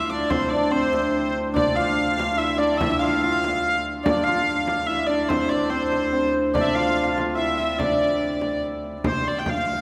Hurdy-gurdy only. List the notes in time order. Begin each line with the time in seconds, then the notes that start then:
0.10 D5
0.30 C5
0.49 D5
0.71 C5
1.55 D5
1.76 F5
2.17 F5
2.38 E5
2.58 D5
2.77 E5
2.99 F5
3.21 F5
4.04 D5
4.24 F5
4.86 E5
5.06 D5
5.29 C5
5.49 D5
5.69 C5
6.54 D5
6.61 D5 E5
6.75 F5
7.36 E5
7.57 E5
7.78 D5
9.06 C5
9.28 D5
9.39 G5
9.49 F5